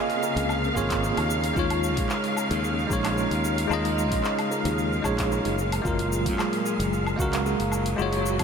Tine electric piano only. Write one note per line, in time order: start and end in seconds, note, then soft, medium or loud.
0.00 0.74 A#3 loud
0.00 0.75 F4 medium
0.00 0.76 G#4 medium
0.00 0.77 C#5 loud
0.00 0.74 D#5 loud
0.74 1.27 A#3 medium
0.74 1.28 F4 medium
0.74 1.28 G#4 medium
0.74 1.29 C#5 medium
1.53 2.86 G#3 medium
1.53 2.87 D#4 medium
1.53 2.87 F4 medium
1.59 2.88 C#5 loud
2.87 3.66 G#3 medium
2.87 3.67 D#4 medium
2.87 3.68 F4 medium
2.93 3.69 C#5 medium
3.68 5.00 G#3 loud
3.68 5.01 D#4 medium
3.68 5.02 F4 medium
3.73 5.03 D#5 loud
5.02 5.55 G#3 medium
5.02 5.56 D#4 medium
5.02 5.56 F4 medium
5.02 5.57 C#5 loud
5.82 7.16 F#3 medium
5.82 7.14 G#3 medium
5.82 7.15 F4 medium
5.88 7.17 A#4 loud
7.16 7.95 G#3 medium
7.16 7.96 F#4 medium
7.16 7.95 F5 medium
7.22 7.97 A#4 loud
7.96 8.44 G#3 loud
7.96 8.44 F4 loud
7.96 8.44 F#4 medium
8.02 8.44 C#5 loud